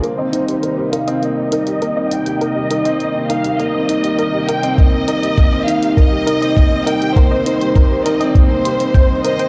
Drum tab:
HH |x-xxx-xxx-xxx-xx|x-xxx-xxx-xxx-xx|x-xxx-xxx-xxx-xx|x-xxx-xxx-xxx-xx|
BD |----------------|----------------|o---o---o---o---|o---o---o---o---|